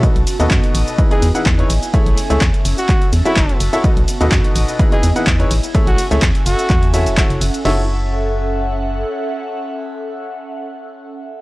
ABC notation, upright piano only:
X:1
M:4/4
L:1/16
Q:"Swing 16ths" 1/4=126
K:F#dor
V:1 name="Upright piano"
[B,,DFABd] z2 [B,,DFABd]4- [B,,DFABd] [E,DEGBd] [E,DEGBd] z [E,DEGBf]2 [DEGBc] z2 | [A,EGAce]2 z [A,EGAce] z6 z [F,EFAce]4 [EFAce] | [B,,DFABd] z2 [B,,DFABd]4- [B,,DFABd] [E,DEGBd] [E,DEGBd] z [E,DEGBf]2 [DEGBc] z2 | [A,EGAce]2 z [A,EGAce] z6 [F,EFAce]2 [F,EFAce]2 z2 |
[EFAce]16- | [EFAce]16 |]